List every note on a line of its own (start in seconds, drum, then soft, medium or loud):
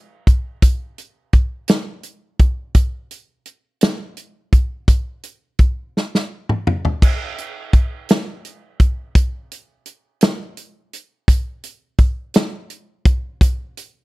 0.27 kick medium
0.27 closed hi-hat soft
0.62 kick medium
0.62 closed hi-hat medium
0.98 closed hi-hat soft
1.33 kick medium
1.33 closed hi-hat soft
1.68 snare medium
1.68 closed hi-hat medium
2.03 closed hi-hat soft
2.39 kick medium
2.39 closed hi-hat soft
2.74 kick medium
2.74 closed hi-hat medium
3.11 closed hi-hat soft
3.46 closed hi-hat soft
3.81 snare medium
3.81 closed hi-hat medium
4.17 closed hi-hat soft
4.53 kick medium
4.53 closed hi-hat soft
4.88 kick medium
4.88 closed hi-hat medium
5.23 closed hi-hat soft
5.59 kick medium
5.59 closed hi-hat soft
5.97 snare soft
6.15 snare soft
6.49 mid tom medium
6.67 mid tom medium
6.85 floor tom medium
7.02 kick medium
7.02 crash medium
7.38 closed hi-hat soft
7.73 kick medium
7.73 closed hi-hat soft
8.09 snare loud
8.09 closed hi-hat medium
8.45 closed hi-hat soft
8.80 kick medium
8.80 closed hi-hat soft
9.15 kick medium
9.15 closed hi-hat medium
9.51 closed hi-hat medium
9.86 closed hi-hat soft
10.21 snare medium
10.21 closed hi-hat medium
10.57 closed hi-hat soft
10.93 closed hi-hat soft
11.28 kick medium
11.28 closed hi-hat medium
11.63 closed hi-hat medium
11.98 kick medium
11.98 closed hi-hat soft
12.34 snare loud
12.34 closed hi-hat medium
12.70 closed hi-hat medium
13.05 kick medium
13.05 closed hi-hat soft
13.41 kick loud
13.41 closed hi-hat medium
13.77 closed hi-hat medium